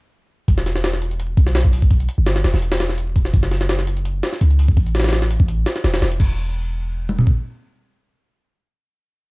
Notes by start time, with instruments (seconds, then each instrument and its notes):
0.48 808-style bass E1, kick, closed hi-hat
0.58 snare
0.66 snare, closed hi-hat
0.75 snare
0.84 snare, closed hi-hat
0.93 snare
1.02 closed hi-hat
1.11 closed hi-hat
1.19 closed hi-hat
1.37 808-style bass B1, kick, closed hi-hat
1.47 snare
1.55 snare, closed hi-hat
1.65 kick
1.73 open hi-hat
1.82 kick
1.91 kick, closed hi-hat
2.00 closed hi-hat
2.09 closed hi-hat
2.18 808-style bass G1
2.26 snare, closed hi-hat
2.36 snare
2.44 808-style bass E1, snare, closed hi-hat
2.54 808-style bass E1, snare
2.62 closed hi-hat
2.72 snare, closed hi-hat
2.80 snare, closed hi-hat
2.89 snare
2.98 closed hi-hat
3.16 kick, closed hi-hat
3.25 snare
3.34 808-style bass F#1, kick, closed hi-hat
3.43 snare
3.51 snare, closed hi-hat
3.61 snare
3.69 snare, closed hi-hat
3.79 snare
3.87 closed hi-hat
3.97 closed hi-hat
4.05 closed hi-hat
4.23 snare, closed hi-hat
4.33 snare
4.41 808-style bass C#2, closed hi-hat
4.50 closed hi-hat
4.59 open hi-hat
4.68 kick
4.77 808-style bass A1, kick, closed hi-hat
4.86 closed hi-hat
4.95 snare, closed hi-hat
5.00 snare, closed hi-hat
5.04 snare, closed hi-hat
5.09 snare, closed hi-hat
5.13 snare, closed hi-hat
5.22 snare
5.31 closed hi-hat
5.40 808-style bass A1, kick
5.48 closed hi-hat
5.66 snare, closed hi-hat
5.76 snare
5.84 808-style bass E1, snare, closed hi-hat
5.94 snare, closed hi-hat
6.02 808-style bass E1, snare, closed hi-hat
6.12 closed hi-hat
6.20 808-style bass E1, kick, crash
7.09 mid tom
7.19 floor tom
7.27 kick